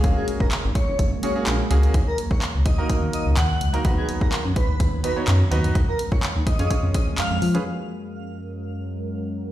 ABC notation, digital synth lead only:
X:1
M:4/4
L:1/16
Q:1/4=126
K:F#
V:1 name="Digital synth lead"
z G z A z2 c3 z c z4 z | z A z c z2 d3 z d z f3 z | z G z A z2 B3 z B z4 z | z A z c z2 d3 z d z e3 z |
z16 |]